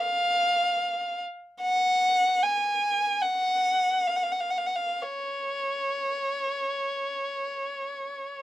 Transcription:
0.00 1.22 F5 medium
1.62 2.40 F#5 medium
2.43 3.22 G#5 medium
3.21 4.08 F#5 medium
4.07 4.16 F5 soft
4.16 4.25 F#5 soft
4.23 4.33 F5 soft
4.32 4.41 F#5 soft
4.40 4.50 F5 soft
4.50 4.59 F#5 soft
4.58 4.67 F5 soft
4.67 4.76 F#5 soft
4.76 5.01 F5 soft
5.02 8.42 C#5 soft

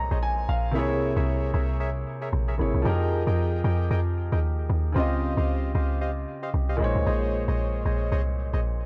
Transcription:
0.00 0.43 A#2 medium
0.00 0.44 G#3 medium
0.00 0.45 D#4 medium
0.00 0.46 C5 medium
0.00 0.47 C#5 medium
0.00 0.20 A#5 medium
0.11 0.47 A#1 medium
0.11 0.18 G#4 medium
0.11 0.18 C5 medium
0.11 0.18 C#5 medium
0.11 0.18 D#5 medium
0.23 0.47 G#5 medium
0.49 0.76 A#1 medium
0.49 0.73 F5 medium
0.71 1.15 C2 loud
0.71 2.54 C3 medium
0.71 2.55 A#3 medium
0.71 2.55 E4 medium
0.71 1.13 G#4 medium
0.71 1.13 A#4 medium
0.71 1.13 C#5 medium
0.71 1.13 E5 loud
0.77 2.56 G#4 medium
0.77 2.57 C#5 medium
1.16 1.53 C2 loud
1.16 1.51 G#4 medium
1.16 1.51 A#4 medium
1.16 1.51 C#5 medium
1.16 1.51 E5 loud
1.53 2.05 C2 loud
1.53 1.78 G#4 medium
1.53 1.78 A#4 medium
1.53 1.78 C#5 medium
1.53 1.79 E5 medium
1.80 1.90 G#4 loud
1.80 1.90 A#4 medium
1.80 1.90 C#5 medium
1.80 1.90 E5 loud
2.21 2.28 G#4 medium
2.21 2.29 A#4 medium
2.21 2.29 C#5 medium
2.21 2.29 E5 medium
2.33 2.58 A#1 loud
2.48 2.55 G#4 medium
2.48 2.55 A#4 medium
2.48 2.55 C#5 medium
2.48 2.55 E5 medium
2.57 2.74 G#1 medium
2.57 2.85 C3 medium
2.57 2.85 A#3 medium
2.57 2.85 E4 medium
2.57 2.86 G#4 medium
2.57 2.86 C#5 medium
2.74 2.85 C2 medium
2.82 3.26 F2 loud
2.82 4.90 F3 medium
2.82 4.91 D#4 medium
2.82 4.92 G4 medium
2.82 3.23 G#4 medium
2.82 3.23 A#4 medium
2.82 3.23 D#5 medium
2.82 3.23 G5 loud
2.87 4.93 G#4 medium
2.87 4.94 A#4 medium
3.27 3.63 F2 loud
3.27 3.62 G#4 medium
3.27 3.62 A#4 medium
3.27 3.62 D#5 medium
3.27 3.62 G5 medium
3.64 3.90 F2 loud
3.64 3.89 G#4 medium
3.64 3.89 A#4 medium
3.64 3.89 D#5 medium
3.64 3.89 G5 medium
3.90 4.31 F2 medium
3.90 4.00 G#4 loud
3.90 4.00 A#4 medium
3.90 4.00 D#5 medium
3.90 4.00 G5 loud
4.32 4.68 D#2 loud
4.32 4.39 G#4 medium
4.32 4.39 A#4 medium
4.32 4.39 D#5 medium
4.32 4.39 G5 medium
4.70 4.95 D#2 loud
4.92 5.36 C#2 loud
4.92 6.75 C#3 medium
4.92 6.76 C4 medium
4.92 6.77 F4 medium
4.92 5.34 G4 medium
4.92 5.34 C5 medium
4.92 5.34 D#5 medium
4.92 5.34 F5 loud
4.98 6.77 G4 medium
4.98 6.78 D#5 medium
5.37 5.74 C#2 loud
5.37 5.72 G4 medium
5.37 5.72 C5 medium
5.37 5.72 D#5 medium
5.37 5.72 F5 medium
5.75 6.26 C#2 loud
5.75 5.99 G4 medium
5.75 5.99 C5 medium
5.75 5.99 D#5 medium
5.75 6.00 F5 medium
6.01 6.11 G4 loud
6.01 6.11 C5 medium
6.01 6.11 D#5 medium
6.01 6.11 F5 loud
6.43 6.50 G4 medium
6.43 6.50 C5 medium
6.43 6.50 D#5 medium
6.43 6.50 F5 medium
6.54 6.79 C2 loud
6.69 6.76 G4 medium
6.69 6.76 C5 medium
6.69 6.76 D#5 medium
6.69 6.76 F5 medium
6.77 6.95 A#1 loud
6.77 8.85 A#2 medium
6.77 8.86 G#3 medium
6.77 8.86 D#4 medium
6.82 8.86 C5 medium
6.82 8.86 C#5 medium
6.95 7.06 C#2 medium
7.06 7.47 A#1 loud
7.06 7.44 G#4 medium
7.06 7.44 C5 medium
7.06 7.44 C#5 medium
7.06 7.45 D#5 loud
7.48 7.84 A#1 loud
7.48 7.83 G#4 medium
7.48 7.83 C5 medium
7.48 7.83 C#5 medium
7.48 7.83 D#5 medium
7.85 8.11 A#1 loud
7.85 8.10 G#4 medium
7.85 8.10 C5 medium
7.85 8.10 C#5 medium
7.85 8.10 D#5 medium
8.11 8.52 C2 loud
8.11 8.21 G#4 medium
8.11 8.21 C5 medium
8.11 8.21 C#5 medium
8.11 8.21 D#5 loud
8.53 8.86 A#1 medium
8.53 8.60 G#4 medium
8.53 8.60 C5 medium
8.53 8.60 C#5 medium
8.53 8.60 D#5 medium

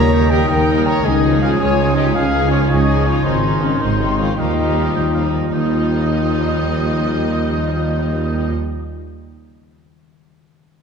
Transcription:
0.00 0.43 D#2 medium
0.00 0.11 D#3 medium
0.00 1.06 D#3 medium
0.00 0.11 G3 medium
0.00 0.12 A#3 medium
0.00 0.12 D#4 medium
0.00 0.50 G4 medium
0.00 0.29 A#4 medium
0.00 1.06 A#4 medium
0.00 0.30 C#5 medium
0.00 0.15 A#5 medium
0.00 0.32 A#5 loud
0.00 1.04 D#6 medium
0.12 0.66 D#3 medium
0.12 0.67 G3 medium
0.12 1.07 A#3 medium
0.12 0.68 A#3 medium
0.12 0.68 D#4 medium
0.12 0.34 G5 medium
0.30 0.39 G4 medium
0.30 0.67 G4 medium
0.30 0.49 A#4 medium
0.30 0.49 G5 medium
0.30 0.47 A#5 medium
0.48 0.98 D#2 medium
0.48 0.85 D#4 medium
0.48 0.81 G#4 soft
0.48 0.86 A#4 medium
0.48 0.88 G5 medium
0.48 0.84 A#5 medium
0.68 1.04 D#3 medium
0.68 1.04 G3 medium
0.68 1.05 A#3 medium
0.68 1.05 D#4 medium
0.68 1.06 G4 medium
0.86 1.07 G3 soft
0.86 1.05 A#4 medium
0.86 1.05 C#5 medium
0.86 1.07 A#5 medium
1.02 1.52 C#2 medium
1.02 1.53 C#2 medium
1.02 2.15 C#3 medium
1.02 1.56 D#4 medium
1.02 1.42 D#4 medium
1.02 1.41 G#4 medium
1.02 1.41 D#5 medium
1.02 3.21 G#5 medium
1.07 2.47 D#6 medium
1.24 1.77 F3 medium
1.24 1.78 G#3 medium
1.24 1.96 C#4 soft
1.24 1.76 C#4 medium
1.24 1.75 D#4 medium
1.41 1.60 F4 medium
1.41 1.50 G#4 medium
1.41 1.78 C#5 soft
1.41 1.50 F5 medium
1.58 2.08 C#2 medium
1.58 2.13 F4 medium
1.58 1.96 G#4 medium
1.58 1.96 C#5 medium
1.58 1.91 D#5 soft
1.58 1.95 G#5 medium
1.76 2.33 F3 medium
1.76 2.33 G#3 soft
1.76 2.32 C#4 medium
1.76 2.31 D#4 medium
1.76 2.51 C#5 medium
1.94 3.06 C#4 soft
1.94 2.14 D#4 medium
1.94 2.15 G4 medium
1.94 2.05 D#5 medium
2.13 2.64 C#2 medium
2.13 3.28 C#3 medium
2.13 2.72 C#4 medium
2.13 2.51 F4 medium
2.13 2.51 G#4 medium
2.13 2.51 F5 medium
2.34 2.88 F3 medium
2.34 4.40 G#3 soft
2.34 2.88 G#3 medium
2.34 2.88 C#4 medium
2.34 2.87 D#4 medium
2.51 2.70 C#4 medium
2.51 2.70 F4 medium
2.51 2.60 C#5 medium
2.51 2.88 C#5 soft
2.70 3.19 C#2 medium
2.70 3.11 C#2 medium
2.70 3.19 C#2 medium
2.70 4.40 D#4 medium
2.70 3.08 D#4 medium
2.70 3.07 G#4 medium
2.70 3.08 D#5 medium
2.70 3.02 D#5 soft
2.70 3.25 C#6 medium
2.89 3.25 F3 soft
2.89 3.25 G#3 soft
2.89 3.25 C#4 soft
2.89 3.24 D#4 soft
2.89 3.27 C#5 soft
3.07 3.15 C#4 medium
3.07 3.26 F4 medium
3.07 3.24 C#5 medium
3.25 3.75 G#1 medium
3.25 3.75 G#2 medium
3.25 4.40 G#2 medium
3.25 3.42 D#3 soft
3.25 3.42 G#3 soft
3.25 3.43 C4 soft
3.25 3.62 C4 medium
3.25 3.42 D#4 soft
3.25 3.64 D#4 medium
3.25 3.62 C5 medium
3.25 3.80 G#5 soft
3.25 4.39 C6 medium
3.43 3.99 D#3 soft
3.43 4.19 D#3 soft
3.43 3.99 G#3 soft
3.43 3.99 C4 soft
3.43 3.99 D#4 soft
3.61 3.81 A#3 medium
3.61 3.81 C#4 medium
3.61 3.82 A#4 medium
3.61 4.00 C5 soft
3.79 4.32 G#1 medium
3.79 4.32 G#2 medium
3.79 4.17 C3 medium
3.79 4.19 D#4 medium
3.79 4.21 C5 medium
3.79 4.14 C#5 soft
3.79 4.41 G5 soft
4.00 4.38 D#3 soft
4.00 4.38 G#3 soft
4.00 4.38 C4 soft
4.00 4.38 D#4 soft
4.00 4.40 C5 soft
4.19 4.38 D#3 soft
4.19 4.28 C#4 medium
4.19 4.38 F4 soft
4.19 4.37 C#5 medium
4.37 4.88 D#2 soft
4.37 4.89 D#2 medium
4.37 5.51 D#3 medium
4.37 4.57 F3 soft
4.37 4.57 G3 soft
4.37 4.58 A#3 soft
4.37 5.31 D#4 medium
4.37 4.58 D#4 soft
4.37 5.33 F4 soft
4.37 5.31 G4 medium
4.37 5.31 D#5 medium
4.37 4.92 F5 soft
4.37 5.33 A#5 soft
4.58 5.14 F3 soft
4.58 5.14 G3 soft
4.58 5.13 A#3 soft
4.58 5.33 D#4 soft
4.58 5.13 D#4 soft
4.95 5.46 D#2 medium
4.95 5.46 D#2 soft
4.95 5.46 D#2 medium
4.95 5.28 C5 soft
4.95 5.13 G5 medium
5.14 5.52 F3 soft
5.14 5.52 G3 soft
5.14 5.51 A#3 soft
5.14 5.51 D#4 soft
5.14 5.79 A#4 soft
5.14 5.23 F5 soft
5.34 5.65 D#4 soft
5.34 5.53 D#5 soft
5.51 8.50 D#2 soft
5.51 8.51 D#2 medium
5.51 8.51 D#2 soft
5.51 9.42 D#3 soft
5.51 8.52 F3 soft
5.51 8.52 G3 soft
5.51 8.51 A#3 soft
5.51 8.51 D#4 soft
5.51 8.52 D#4 medium
5.51 8.51 F4 soft
5.51 8.51 D#5 medium
5.51 8.51 D#5 soft
5.51 8.52 G5 soft
5.51 8.51 D#6 medium
5.60 9.25 G3 soft
5.67 9.28 D#4 soft
5.74 9.32 F4 soft
5.81 9.35 A#4 soft
5.87 9.39 F5 soft

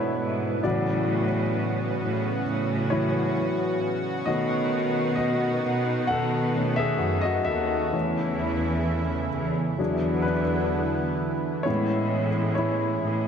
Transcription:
0.00 0.15 G#2 medium
0.00 0.60 B2 medium
0.00 0.67 B2 soft
0.00 0.60 E3 soft
0.00 0.66 A3 soft
0.00 0.66 B3 soft
0.00 4.25 B3 medium
0.00 0.60 C#4 soft
0.00 0.66 D4 medium
0.00 0.60 E4 medium
0.00 0.66 A4 medium
0.00 0.66 B4 medium
0.00 0.60 C#5 medium
0.00 0.66 E5 medium
0.19 0.61 G#2 medium
0.63 1.97 A2 medium
0.63 4.24 C#3 medium
0.63 1.25 C#3 soft
0.63 1.24 E3 soft
0.63 1.25 F#3 soft
0.63 7.90 F#4 medium
0.63 2.43 F#4 soft
0.63 2.42 D5 medium
2.01 2.43 A2 medium
2.46 3.78 A2 medium
2.90 3.33 E3 soft
2.90 3.33 F#3 soft
2.90 3.33 C#4 soft
2.90 4.24 E4 medium
2.90 4.31 C#5 medium
4.26 5.60 B2 medium
4.26 5.60 D#3 soft
4.26 7.91 D#3 medium
4.26 5.61 A3 soft
4.26 7.91 B3 medium
4.26 5.61 C#4 soft
4.26 5.15 F#4 medium
4.26 5.14 D#5 medium
5.15 6.06 F#4 medium
5.15 6.05 D#5 medium
5.64 6.07 B2 medium
6.07 6.98 B2 medium
6.07 6.75 A4 medium
6.07 6.80 F#5 medium
6.55 6.98 D#3 soft
6.55 6.98 A3 soft
6.55 6.98 C#4 soft
6.76 7.22 G#4 medium
6.76 7.25 E5 medium
7.02 7.45 F#2 medium
7.21 7.47 F#4 medium
7.21 7.47 D#5 medium
7.45 7.91 D#2 medium
7.45 10.22 A4 medium
7.45 10.32 E5 medium
7.93 9.29 E2 loud
7.93 9.77 C#3 medium
7.93 9.28 E3 soft
7.93 9.77 E3 medium
7.93 9.28 A3 soft
7.93 9.29 C#4 soft
7.93 9.78 E4 medium
9.33 9.76 E2 medium
9.78 11.15 E2 medium
9.78 11.63 D3 medium
9.78 13.28 E3 medium
9.78 10.41 F#3 soft
9.78 11.63 B3 medium
9.78 10.25 D4 soft
9.78 11.63 E4 medium
9.78 10.41 G#4 soft
10.22 11.62 D4 medium
10.22 11.68 B4 medium
11.63 13.00 A2 medium
11.63 12.27 G#3 soft
11.63 13.28 G#3 medium
11.63 12.27 B3 soft
11.63 12.27 C#4 soft
11.63 13.28 E4 medium
11.63 12.54 E4 medium
11.63 12.54 C#5 medium
12.55 13.28 E4 medium
12.55 13.28 C#5 medium
13.04 13.28 A2 medium

